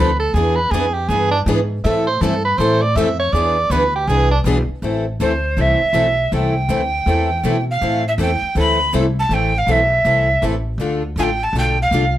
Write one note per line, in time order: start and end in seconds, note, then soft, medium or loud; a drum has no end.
0.00 0.33 D2 medium
0.00 0.10 D#4 medium
0.00 0.10 A4 medium
0.00 0.19 B4 medium
0.19 0.35 A4 loud
0.34 0.71 E2 medium
0.34 0.57 E3 medium
0.34 0.57 B3 medium
0.34 0.57 D4 medium
0.34 0.57 G#4 medium
0.34 0.58 G#4 medium
0.34 0.58 B4 medium
0.56 0.72 B4 loud
0.71 1.08 F2 medium
0.71 0.84 E3 medium
0.71 0.85 B3 medium
0.71 0.84 D4 medium
0.71 0.95 G#4 medium
0.71 0.85 G#4 medium
0.71 0.85 B4 loud
0.94 1.10 G4 medium
1.08 1.45 G2 medium
1.08 1.32 E3 medium
1.08 1.31 B3 medium
1.08 1.32 D4 medium
1.08 1.30 G#4 loud
1.08 1.32 G#4 medium
1.08 1.32 B4 medium
1.31 1.40 D4 medium
1.46 1.83 G#2 medium
1.46 1.59 E3 medium
1.46 1.59 B3 medium
1.46 1.59 D4 loud
1.46 1.59 G#4 loud
1.46 1.59 B4 medium
1.84 2.20 A2 loud
1.84 2.06 E3 medium
1.84 2.06 A3 medium
1.84 2.06 C4 medium
1.84 2.07 E4 medium
1.84 2.07 A4 medium
1.84 2.06 E5 medium
2.07 2.23 C5 medium
2.21 2.57 G2 medium
2.21 2.34 E3 medium
2.21 2.34 A3 medium
2.21 2.34 C4 loud
2.21 2.34 E4 loud
2.21 2.44 A4 medium
2.21 2.34 A4 medium
2.45 2.59 B4 loud
2.57 2.94 A2 medium
2.57 2.81 E3 medium
2.57 2.81 A3 medium
2.57 2.81 C4 medium
2.57 2.82 E4 medium
2.57 2.83 C5 medium
2.62 2.82 A4 medium
2.82 2.98 D5 loud
2.96 3.32 F2 loud
2.96 3.08 E3 loud
2.96 3.08 A3 loud
2.96 3.08 C4 loud
2.96 3.09 E4 loud
2.96 3.09 A4 loud
2.96 3.19 E5 loud
3.19 3.34 C#5 loud
3.33 3.69 E2 medium
3.33 3.56 E3 medium
3.33 3.56 B3 medium
3.33 3.56 D4 medium
3.33 3.56 G#4 medium
3.33 3.73 D5 loud
3.37 3.56 B4 medium
3.70 4.06 D2 medium
3.70 3.82 E3 medium
3.70 3.82 B3 medium
3.70 3.83 D4 loud
3.70 3.83 G#4 loud
3.70 3.95 B4 medium
3.70 3.83 B4 loud
3.95 4.10 G4 loud
4.07 4.43 C2 medium
4.07 4.30 E3 medium
4.07 4.30 B3 medium
4.07 4.30 D4 medium
4.07 4.31 G#4 loud
4.07 4.30 G#4 medium
4.07 4.31 B4 medium
4.31 4.39 D4 medium
4.44 4.66 B1 loud
4.44 4.57 E3 medium
4.44 4.57 B3 loud
4.44 4.57 D4 loud
4.44 4.57 G#4 loud
4.44 4.58 B4 loud
4.68 muted upright bass stroke soft
4.82 5.18 A1 medium
4.82 5.04 E3 medium
4.82 5.04 A3 medium
4.82 5.04 C4 medium
4.82 5.05 E4 medium
4.82 5.05 A4 medium
5.20 5.56 D2 medium
5.20 5.31 E3 medium
5.20 5.31 A3 medium
5.20 5.32 C4 medium
5.20 5.32 E4 medium
5.20 5.32 A4 medium
5.20 5.62 C5 medium
5.57 5.79 C2 medium
5.57 5.78 E3 medium
5.57 5.79 A3 medium
5.57 5.79 C4 medium
5.57 5.79 E4 medium
5.57 5.79 A4 medium
5.57 6.33 E5 medium
5.81 muted upright bass stroke soft
5.93 6.30 B1 medium
5.93 6.05 E3 medium
5.93 6.06 A3 medium
5.93 6.06 C4 medium
5.93 6.06 E4 medium
5.93 6.06 A4 medium
6.32 6.68 C2 medium
6.32 6.53 E3 medium
6.32 6.54 A3 medium
6.32 6.54 C4 medium
6.32 6.54 E4 medium
6.32 6.54 A4 medium
6.32 7.64 G5 medium
6.69 7.05 D2 medium
6.69 6.80 E3 medium
6.69 6.81 A3 medium
6.69 6.81 C4 medium
6.69 6.81 E4 medium
6.69 6.81 A4 loud
7.06 7.42 E2 medium
7.06 7.28 E3 medium
7.06 7.29 A3 medium
7.06 7.29 C4 medium
7.06 7.29 E4 medium
7.06 7.29 A4 medium
7.43 7.80 B2 medium
7.43 7.55 E3 medium
7.43 7.55 A3 medium
7.43 7.55 C4 medium
7.43 7.56 E4 medium
7.43 7.56 A4 medium
7.70 8.03 F5 medium
7.81 8.17 A2 medium
7.81 8.03 E3 medium
7.81 8.03 A3 medium
7.81 8.03 C4 medium
7.81 8.03 E4 medium
7.81 8.04 A4 medium
8.07 8.13 E5 medium
8.18 8.40 E2 medium
8.18 8.30 E3 medium
8.18 8.30 A3 medium
8.18 8.31 C4 medium
8.18 8.31 E4 medium
8.18 8.31 A4 medium
8.18 8.55 G5 medium
8.42 muted upright bass stroke soft
8.55 8.91 D2 medium
8.55 8.77 E3 medium
8.55 8.77 A3 medium
8.55 8.78 C4 medium
8.55 8.78 E4 medium
8.55 8.78 A4 medium
8.55 8.92 B5 loud
8.93 9.29 C2 medium
8.93 9.04 E3 medium
8.93 9.05 A3 medium
8.93 9.05 C4 medium
8.93 9.05 E4 loud
8.93 9.05 A4 medium
9.19 9.35 A5 loud
9.29 9.66 A1 medium
9.29 9.52 E3 medium
9.29 9.52 A3 medium
9.29 9.53 C4 medium
9.29 9.52 E4 medium
9.29 9.53 A4 medium
9.29 9.59 G5 medium
9.58 9.72 F5 medium
9.67 10.03 B1 medium
9.67 9.79 E3 medium
9.67 9.79 A3 medium
9.67 9.79 C4 medium
9.67 9.80 E4 medium
9.67 9.80 A4 medium
9.71 10.44 E5 medium
10.05 10.41 C2 medium
10.05 10.26 E3 medium
10.05 10.27 A3 medium
10.05 10.27 C4 medium
10.05 10.27 E4 medium
10.05 10.27 A4 medium
10.42 10.77 A1 medium
10.42 10.54 E3 medium
10.42 10.54 A3 medium
10.42 10.54 C4 medium
10.42 10.55 E4 medium
10.42 10.55 A4 medium
10.78 11.15 D2 medium
10.78 11.01 D3 medium
10.78 11.01 A3 medium
10.78 11.01 D4 medium
10.78 11.02 F4 medium
10.78 11.02 A4 medium
11.16 11.52 A1 medium
11.16 11.28 D3 medium
11.16 11.29 A3 medium
11.16 11.29 D4 medium
11.16 11.29 F4 medium
11.16 11.29 A4 medium
11.16 11.23 G#5 medium
11.22 11.44 G5 loud
11.43 11.55 A5 medium
11.53 11.90 B1 medium
11.53 11.76 D3 medium
11.53 11.76 A3 medium
11.53 11.77 D4 medium
11.53 11.77 F4 medium
11.53 11.77 A4 medium
11.58 11.78 G5 medium
11.81 12.14 F5 loud
11.91 12.18 C2 medium
11.91 12.03 D3 medium
11.91 12.04 A3 medium
11.91 12.04 D4 medium
11.91 12.04 F4 loud
11.91 12.04 A4 medium